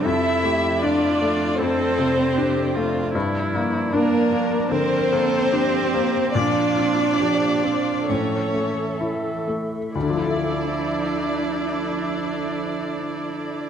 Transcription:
<<
  \new Staff \with { instrumentName = "Violin section" } { \time 4/4 \key d \minor \tempo 4 = 72 e''4 d''4 c''2 | r4 bes'4 c''2 | d''2 cis''4 r4 | d''1 | }
  \new Staff \with { instrumentName = "Ambient pad" } { \time 4/4 \key d \minor << { d''1~ | d''1 | c''2 e''2 | e''1 | } \\ { <f a'>1 | <f bes>1~ | <f bes>2 <e a'>2 | <f a'>1 | } >> }
  \new Staff \with { instrumentName = "Viola" } { \time 4/4 \key d \minor a'8 g'8 f'4 a'4 g'8 f'8 | e'4 d'4 bes'8 a'8 g'4 | f'4 g'8 f'8 a'4. r8 | e'1 | }
  \new Staff \with { instrumentName = "Cello" } { \time 4/4 \key d \minor e'4 d'4 c'2 | r4 bes4 c'2 | d'2 cis'4 r4 | d'1 | }
  \new Staff \with { instrumentName = "Felt piano" } { \time 4/4 \key d \minor f,8 a8 d'8 a8 f,8 c8 d'8 a8 | g,8 bes8 d'8 bes8 d8 bes8 d'8 bes8 | bes,8 c'8 f8 c'8 a,8 a8 e'8 a8 | <d, d f e' a' e''>1 | }
>>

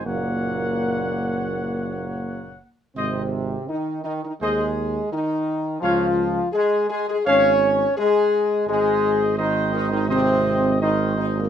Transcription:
<<
  \new Staff \with { instrumentName = "Trumpet section" } { \time 4/4 \key aes \major \tempo 4 = 84 <des'' ges''>2.~ <des'' ges''>8 r8 | <c'' ees''>8 r4. <c'' ees''>8 r4. | <des'' f''>8 r4. <des'' f''>8 r4. | <c'' ees''>4 <c'' ees''>4 <c'' ees''>4 <c'' ees''>4 | }
  \new Staff \with { instrumentName = "French horn section" } { \time 4/4 \key aes \major bes2.~ bes8 r8 | c'4 ees'8 ees'16 ees'16 aes'4 ees'4 | f'4 aes'8 aes'16 aes'16 des''4 aes'4 | aes'4 ees'8 ees'16 ees'16 c'4 ees'8 ees'16 bes16 | }
  \new Staff \with { instrumentName = "Trombone section" } { \clef bass \time 4/4 \key aes \major bes,2.~ bes,8 r8 | c4 ees8 ees16 ees16 aes4 ees4 | f4 aes8 aes16 aes16 des'4 aes4 | aes4 ees8 ees16 ees16 c4 ees8 ees16 bes,16 | }
  \new Staff \with { instrumentName = "Tuba" } { \clef bass \time 4/4 \key aes \major ges,,2.~ ges,,8 r8 | aes,,4 r4 ees,4 r4 | des,4 r4 aes,,4 r4 | aes,,1 | }
>>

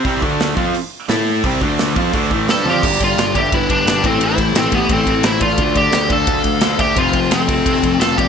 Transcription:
<<
  \new Staff \with { instrumentName = "Lead electric guitar" } { \time 4/4 \key g \mixolydian \tempo 4 = 174 r1 | r2. c''8 d''8~ | d''8 d''4 e''8 b'8 b'4 a'8 | c''4 a'8 g'8 a'4 c''8 d''8~ |
d''8 d''4 f''2 e''8 | c''4 a'2 f''8 d''8 | }
  \new Staff \with { instrumentName = "Lead electric guitar" } { \time 4/4 \key g \mixolydian r1 | r2. a'8 g'8~ | g'8 f'4 g'8 e'8 d'4 c'8 | e'4 c'8 b8 c'4 e'8 f'8~ |
f'8 g'4 a'2 g'8 | f'4 c'2 a'8 g'8 | }
  \new Staff \with { instrumentName = "Distorted electric guitar" } { \time 4/4 \key g \mixolydian <c g c'>8 <d a d'>4 <f c' f'>8 r4 <a e' a'>4 | <c g c'>8 <d a d'>4 <f c' f'>8 <d a d'>8 <a, e a>8 <g d' g'>8 <f c' f'>8 | r1 | r1 |
r1 | r1 | }
  \new Staff \with { instrumentName = "Distorted electric guitar" } { \clef bass \time 4/4 \key g \mixolydian <c g c'>8 <d a d'>4 <f c' f'>8 r4 <a e' a'>4 | <c g c'>8 <d a d'>4 <f c' f'>8 <d a d'>8 <a, e a>8 <g d' g'>8 <f c' f'>8 | <g, d g>4. <g, d g>4. <g, d g>8 <a, e a>8~ | <a, e a>4 <a, e a>4. <a, e a>4 r8 |
<d a d'>4. <d a d'>4. <d a d'>4 | <f, c f>4. <f, c f>4. <f, c f>4 | }
  \new Staff \with { instrumentName = "Picked electric bass" } { \clef bass \time 4/4 \key g \mixolydian c,8 d,4 f,8 r4 a,4 | c,8 d,4 f,8 d,8 a,,8 g,8 f,8 | g,,8 g,,8 g,,8 g,,8 g,,8 g,,8 g,,8 a,,8 | a,,8 a,,8 a,,4 a,,8 a,,8 a,,8 a,,8 |
d,8 d,8 d,8 d,8 d,8 d,8 d,8 d,8 | f,,8 f,,8 f,,4 f,,8 f,,8 f,,8 f,,8 | }
  \new DrumStaff \with { instrumentName = "Drums" } \drummode { \time 4/4 <hho bd>8 bd8 <hho sn>8 bd8 hho4 <hho sn>4 | <hho bd>8 bd8 <hho sn>8 bd8 <hho bd>8 bd8 <hho sn>8 tommh8 | <cymc bd>8 <bd cymr>8 <cymr sn>8 <bd cymr>8 <bd cymr>8 <bd cymr>8 <cymr sn>8 <bd cymr>8 | cymr8 <bd cymr>8 <cymr sn>8 <bd cymr>8 <bd cymr>8 <bd cymr>8 <cymr sn>8 <bd cymr>8 |
<bd cymr>8 <bd cymr>8 <cymr sn>8 <bd cymr>8 <bd cymr>8 <bd cymr>8 <cymr sn>8 <bd cymr>8 | <bd cymr>8 <bd cymr>8 <cymr sn>8 <bd cymr>8 <bd cymr>8 <bd cymr>8 <cymr sn>8 <bd cymr>8 | }
>>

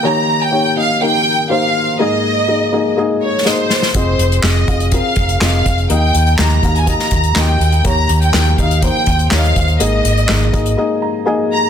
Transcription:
<<
  \new Staff \with { instrumentName = "Violin section" } { \time 4/4 \key ees \mixolydian \tempo 4 = 123 bes''8. g''8. f''8 g''4 f''4 | ees''2 r8 des''8 c''4 | c''4 ees''4 f''4 f''4 | g''4 bes''8. aes''16 bes''4 g''4 |
bes''8. g''8. f''8 g''4 f''4 | ees''2 r4. bes''8 | }
  \new Staff \with { instrumentName = "Felt piano" } { \time 4/4 \key ees \mixolydian <bes ees' g' des''>4 <bes ees' g' des''>8 <bes ees' g' ees''>8 <bes ees' g' bes'>4 <bes ees' g' c''>4 | <bes ees' aes' ees''>4 <bes ees' aes' ees''>8 <bes ees' aes' ees''>8 <bes ees' aes' ees''>4 <bes ees' aes' ees''>4 | <c' f' aes' ees''>4 <c' f' aes' ees''>8 <c' f' aes' f''>8 <c' f' aes' bes'>4 <c' f' aes' ees''>4 | <bes ees' g' ees''>4 <bes ees' g' ees''>8 <bes ees' g' f''>8 <bes ees' g' ees''>4 <bes ees' g' ees''>4 |
<bes ees' g' des''>4 <bes ees' g' bes'>8 <bes ees' g' ees''>8 <bes ees' g' c''>4 <bes ees' g' des'' ees''>4 | <bes ees' aes' ees''>4 <bes ees' aes' ees''>8 <bes ees' aes' ees''>8 <bes ees' aes' ees''>4 <bes ees' aes' ees''>4 | }
  \new Staff \with { instrumentName = "Felt piano" } { \clef bass \time 4/4 \key ees \mixolydian ees4. r2 r8 | aes,4. r2 r8 | r1 | ees4. r2 r8 |
ees4. r2 r8 | aes,4. r4 bes''8 aes''4 | }
  \new Staff \with { instrumentName = "Fingered electric bass" } { \clef bass \time 4/4 \key ees \mixolydian r1 | r1 | f,,8 f,,8 f,,8 f,,8. r16 f,,8 f,,8 f,,8 | ees,8 ees,8 ees,8 ees,8. r16 ees,8 ees,8 ees,8 |
ees,8 ees,8 ees,8 ees,8. r16 ees,8 ees,8 ees,8 | aes,,8 aes,,8 aes,,8 r2 r8 | }
  \new DrumStaff \with { instrumentName = "Drums" } \drummode { \time 4/4 r4 r4 r4 r4 | r4 r4 r4 sn8 sn16 sn16 | <hh bd>8 hh16 hh16 <hc sn>8 <hh bd>16 hh16 <hh bd>8 <hh bd>16 hh16 <hc sn>8 <hh bd>16 hh16 | hh8 hh16 hh16 <hc sn>8 <hh bd>16 hh16 <hh bd>16 sn16 <hh bd>16 hh16 <hc sn>8 hh16 hh16 |
<hh bd>8 hh16 hh16 <hc sn>8 <hh bd>16 hh16 <hh bd>8 <hh bd>16 hh16 <hc sn>16 hh16 <hh bd>16 hh16 | hh8 hh16 hh16 <hc sn>8 <hh bd>16 hh16 r4 r4 | }
>>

